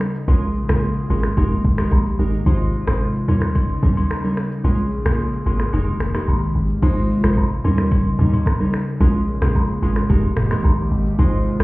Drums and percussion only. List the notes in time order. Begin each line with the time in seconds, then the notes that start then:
0.01 finger snap, cross-stick, shaker
0.15 shaker
0.28 kick, high agogo, shaker
0.42 shaker
0.55 shaker
0.69 finger snap, cross-stick, high agogo, shaker
0.83 shaker
0.97 shaker
1.10 high agogo, shaker
1.23 finger snap, cross-stick, shaker
1.37 kick, high agogo, shaker
1.51 shaker
1.65 kick, shaker
1.78 finger snap, cross-stick, high agogo, shaker
1.91 kick, low woodblock, shaker
2.06 shaker
2.19 shaker
2.33 shaker
2.46 kick, high agogo, shaker
2.60 shaker
2.73 shaker
2.87 finger snap, cross-stick, high agogo, shaker
3.01 shaker
3.15 shaker
3.28 high agogo, shaker
3.42 finger snap, cross-stick, shaker
3.55 kick, high agogo, shaker
3.69 shaker
3.83 kick, shaker
3.97 high agogo, shaker
4.10 finger snap, cross-stick, low woodblock, shaker
4.24 shaker
4.37 finger snap, cross-stick, shaker
4.51 shaker
4.64 high agogo, shaker
4.79 shaker
4.91 shaker
5.06 finger snap, cross-stick, high agogo, shaker
5.19 shaker
5.33 shaker
5.46 high agogo, shaker
5.60 finger snap, cross-stick, shaker
5.73 high agogo, shaker
5.88 shaker
6.00 finger snap, cross-stick, shaker
6.14 finger snap, cross-stick, high agogo, shaker
6.28 low woodblock, shaker
6.42 shaker
6.55 shaker
6.70 shaker
6.82 kick, crash, high agogo, shaker
7.10 shaker
7.24 finger snap, cross-stick, high agogo, shaker
7.37 kick, low woodblock, shaker
7.64 high agogo, shaker
7.78 finger snap, cross-stick, shaker
7.91 kick, high agogo, shaker
8.19 mid tom, shaker
8.33 high agogo, shaker
8.46 finger snap, kick, cross-stick, low woodblock, shaker
8.74 finger snap, cross-stick, shaker
8.88 shaker
9.01 kick, high agogo, shaker
9.28 shaker
9.42 finger snap, cross-stick, high agogo, shaker
9.55 kick, low woodblock, shaker
9.83 high agogo, shaker
9.96 finger snap, cross-stick, shaker
10.09 kick, high agogo, shaker
10.37 finger snap, cross-stick, mid tom, shaker
10.51 finger snap, cross-stick, high agogo, shaker
10.64 kick, low woodblock, shaker
10.92 shaker
11.06 shaker
11.19 kick, high agogo, shaker
11.46 shaker
11.60 finger snap, cross-stick, shaker